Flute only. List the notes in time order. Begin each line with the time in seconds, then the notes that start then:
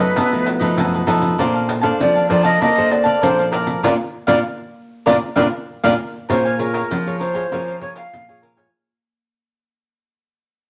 Already playing: B4
2.01 D5
2.31 D5
2.45 D#5
2.62 D#5
2.92 D5
3.23 C5
3.52 A#4
3.84 D5
4.27 D5
5.06 D5
5.36 D5
5.84 D5
6.29 C5
6.59 A#4
7.20 C5
7.82 C#5
7.97 F5